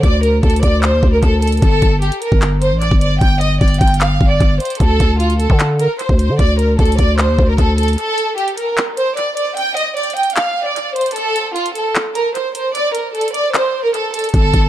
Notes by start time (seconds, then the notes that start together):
0.03 D2 D5, kick, closed hi-hat
0.23 A#4, closed hi-hat
0.43 D2 A4, kick, closed hi-hat
0.50 closed hi-hat
0.56 closed hi-hat
0.62 D2 D5, kick, closed hi-hat
0.83 C5, clap, closed hi-hat
0.93 D#2
1.03 D2, kick
1.13 A#4
1.23 D2 A4, kick, closed hi-hat
1.42 A4, closed hi-hat, open hi-hat
1.47 closed hi-hat
1.52 closed hi-hat
1.57 closed hi-hat
1.62 G1 A4, kick, closed hi-hat
1.82 G1, kick, closed hi-hat
2.02 G4, closed hi-hat
2.12 closed hi-hat
2.22 A#4, closed hi-hat
2.32 G1, kick
2.42 clap, closed hi-hat
2.62 C5, closed hi-hat
2.72 A1
2.81 D5, closed hi-hat
2.91 G1, kick
3.01 D5, closed hi-hat
3.21 G1 G5, kick, closed hi-hat
3.41 D#5, closed hi-hat
3.61 G1 D5, kick, closed hi-hat
3.68 closed hi-hat
3.74 closed hi-hat
3.81 G1 G5, kick, closed hi-hat
3.88 closed hi-hat
3.94 closed hi-hat
4.01 F5, clap, closed hi-hat
4.21 G1, kick
4.30 D5
4.40 G1, kick, closed hi-hat
4.60 C5, closed hi-hat, open hi-hat
4.65 closed hi-hat
4.70 closed hi-hat
4.75 closed hi-hat
4.80 D2 A4, kick, closed hi-hat
5.00 D2, kick, closed hi-hat
5.20 F4, closed hi-hat
5.30 closed hi-hat
5.40 A4, closed hi-hat
5.50 D3, kick
5.60 clap, closed hi-hat
5.79 A#4, closed hi-hat
5.99 C5, closed hi-hat
6.09 D2, kick
6.19 C5, closed hi-hat
6.29 D3
6.39 D2 D5, kick, closed hi-hat
6.59 A#4, closed hi-hat
6.79 D2 A4, kick, closed hi-hat
6.85 closed hi-hat
6.92 closed hi-hat
6.98 D2 D5, kick, closed hi-hat
7.19 C5, cross-stick, clap, closed hi-hat
7.29 D#2
7.38 D2, kick
7.48 A#4
7.58 D2 A4, kick, closed hi-hat
7.78 A4, closed hi-hat, open hi-hat
7.83 closed hi-hat
7.88 closed hi-hat
7.93 closed hi-hat
7.98 A4, closed hi-hat
8.18 closed hi-hat
8.38 G4, closed hi-hat
8.48 closed hi-hat
8.57 A#4, closed hi-hat
8.78 clap, closed hi-hat
8.97 C5, closed hi-hat
9.17 D5, closed hi-hat
9.37 D5, closed hi-hat
9.57 G5, closed hi-hat
9.77 D#5, closed hi-hat
9.97 D5, closed hi-hat
10.03 closed hi-hat
10.10 closed hi-hat
10.17 G5, closed hi-hat
10.23 closed hi-hat
10.30 closed hi-hat
10.36 F5, clap, closed hi-hat
10.66 D5
10.76 closed hi-hat
10.96 C5, closed hi-hat, open hi-hat
11.01 closed hi-hat
11.06 closed hi-hat
11.11 closed hi-hat
11.16 A4, closed hi-hat
11.36 closed hi-hat
11.55 F4, closed hi-hat
11.66 closed hi-hat
11.75 A4, closed hi-hat
11.95 clap, closed hi-hat
12.15 A#4, closed hi-hat
12.35 C5, closed hi-hat
12.55 C5, closed hi-hat
12.75 D5, closed hi-hat
12.95 A#4, closed hi-hat
13.14 A4, closed hi-hat
13.21 closed hi-hat
13.28 closed hi-hat
13.34 D5, closed hi-hat
13.54 C5, cross-stick, clap, closed hi-hat
13.84 A#4
13.94 A4, closed hi-hat
14.14 A4, closed hi-hat, open hi-hat
14.19 closed hi-hat
14.24 closed hi-hat
14.29 closed hi-hat
14.34 G1 A4, kick, closed hi-hat
14.54 G1, kick, closed hi-hat